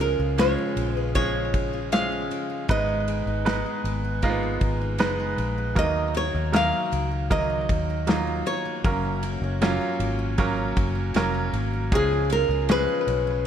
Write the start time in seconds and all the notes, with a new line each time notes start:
Already playing: C#2 C#3 F3 G#3 C#4 F4 G#4
0.00 G#4 A#4
0.19 C#2 F4
0.38 F3 G#3 C#4 F4 C#5, snare, ride
0.58 G#4
0.76 A#1 C#4, ride
0.97 G#4 B4
1.15 C#3 F3 G#3 C#4 G#4 C#5, kick, ride
1.35 F4
1.54 G#4, kick, ride
1.73 F4
1.92 F3 G#3 C#4 G#4 F5, snare, ride
2.12 G#4
2.31 C#4, ride
2.50 G#4
2.68 G#1 G#2 G#3 B3 D#4 B4 D#5, kick, ride
2.88 D#4
3.08 G#4, ride
3.26 G#1 D#4
3.45 G#3 B3 D#4 B4, snare, ride
3.66 G#4
3.84 G#1 B3, ride
4.04 G#4
4.22 G#2 G#3 A#3 D#4 F4, kick, ride
4.30 B3
4.43 D#4
4.61 G#1 G#4, kick, ride
4.82 D#4
4.98 F#1 G#3 B3 D#4 B4, snare, ride
5.20 G#4
5.38 A#1 B3, ride
5.58 G#4
5.75 D#2 D#3 F#3 A#3 D#4 A#4 D#5, kick, ride
5.96 D#4
6.15 F#4 C#5, ride
6.34 D#2 D#4
6.52 F#3 A#3 D#4 A#4 F5, snare, ride
6.73 F#4
6.92 C#2 A#3, ride
7.11 F#4
7.30 D#3 F#3 A#3 D#4 A#4 D#5, kick, ride
7.50 D#4
7.69 D#2 F#4, kick, ride
7.90 D#4
8.07 F#3 A#3 D#4 F4, snare, ride
8.27 F#4
8.46 A#3 C#5, ride
8.65 F#4
8.84 F#1 F#2 F#3 A#3 C#4 A#4, kick, ride
9.04 C#4
9.23 F#4, ride
9.41 F#1 C#4
9.62 F#3 A#3 C#4 F4, snare, ride
9.81 F#4
9.99 G#1 A#3, ride
10.19 F#4
10.38 F#3 A#3 C#4 A#4, kick, ride
10.57 C#4
10.76 F#1 F#4, kick, ride
10.95 C#4
11.14 F1 F#3 A#3 C#4 A#4, snare, ride
11.34 F#4
11.53 G#1 A#3, ride
11.73 F#4
11.92 C#2 C#3 F3 G#3 C#4 G#4, kick, ride
12.13 F4
12.30 G#4 A#4, ride
12.49 C#2 F4
12.69 F3 G#3 C#4 G#4 B4, snare, ride
12.88 G#4
13.07 B1 C#4, ride
13.27 G#4